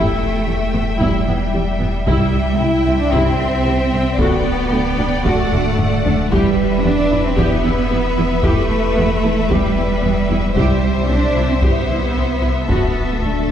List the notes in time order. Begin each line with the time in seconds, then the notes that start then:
Already playing: E1 A3 E4 G4 E5 G5
0.47 E2 G3
0.73 E2 B3
1.00 E2 G3 E4 G4, taiko
1.26 E2 B3
1.53 E2 G3
1.80 E2 B3
2.06 C2 G3 E4 G4 E5 G5, taiko
2.59 C2 G3 E4
2.86 C2 C4
3.00 D4
3.12 C2 C4 E4 G4, taiko
3.40 C2 C4
3.66 C2 G3
3.92 C2 C4
4.18 D1 D2 B3 F#4 A4 D5, taiko
4.72 D2 A3
4.98 D2 D4
5.25 D2 A3 F#4 A4 F#5, taiko
5.52 D2 D4, taiko low-mid
5.78 D2 A3, taiko low-mid
6.05 D2 D4, taiko low
6.31 E1 E2 G3 E4 G4 B4 E5, taiko
6.84 E2 B3 D4
7.10 E2 E4
7.24 C4
7.37 E2 B3 E4 G4, taiko
7.64 E2 E4
7.90 E2 B3
8.17 E2 E4
8.43 E2 A3 E4 G4, taiko
8.96 E2 B3
9.23 E2 E4
9.49 E2 G3 E4 G4, taiko
9.76 E2 E4
10.03 E2 B3
10.28 E2 E4
10.56 C2 G3 E4 G4 C5 E5, taiko
11.09 C2 C4 D4
11.36 C2 E4
11.49 C4
11.62 C2 B3 E4 G4, taiko
11.88 C2 E4
12.15 C2 C4
12.41 C2 E4
12.68 D1 D2 B3 F#4 A4, taiko
13.21 D2 A3 D4
13.48 D2 D4